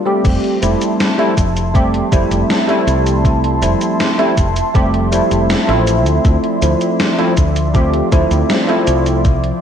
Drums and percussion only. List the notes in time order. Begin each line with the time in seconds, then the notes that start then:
0.25 kick, closed hi-hat, crash, cabasa
0.44 closed hi-hat
0.63 closed hi-hat, cabasa
0.81 closed hi-hat, cabasa
1.00 snare, closed hi-hat, cabasa
1.19 closed hi-hat
1.37 kick, closed hi-hat, cabasa
1.56 closed hi-hat, cabasa
1.75 kick, closed hi-hat, cabasa
1.94 closed hi-hat
2.12 kick, closed hi-hat, cabasa
2.31 closed hi-hat, cabasa
2.50 snare, closed hi-hat, cabasa
2.69 closed hi-hat
2.88 closed hi-hat, cabasa
3.07 closed hi-hat, cabasa
3.25 kick, closed hi-hat, cabasa
3.44 closed hi-hat
3.63 closed hi-hat, cabasa
3.81 closed hi-hat, cabasa
4.00 snare, closed hi-hat, cabasa
4.19 closed hi-hat
4.37 kick, closed hi-hat, cabasa
4.56 closed hi-hat, cabasa
4.75 kick, closed hi-hat, cabasa
4.94 closed hi-hat
5.12 closed hi-hat, cabasa
5.31 closed hi-hat, cabasa
5.50 snare, closed hi-hat, cabasa
5.69 closed hi-hat
5.87 closed hi-hat, cabasa
6.06 closed hi-hat, cabasa
6.25 kick, closed hi-hat, cabasa
6.44 closed hi-hat
6.62 closed hi-hat, cabasa
6.81 closed hi-hat, cabasa
7.00 snare, closed hi-hat, cabasa
7.19 closed hi-hat
7.37 kick, closed hi-hat, cabasa
7.56 closed hi-hat, cabasa
7.75 kick, closed hi-hat, cabasa
7.94 closed hi-hat
8.12 kick, closed hi-hat, cabasa
8.31 closed hi-hat, cabasa
8.50 snare, closed hi-hat, cabasa
8.69 closed hi-hat
8.87 closed hi-hat, cabasa
9.06 closed hi-hat, cabasa
9.25 kick, closed hi-hat, cabasa
9.44 closed hi-hat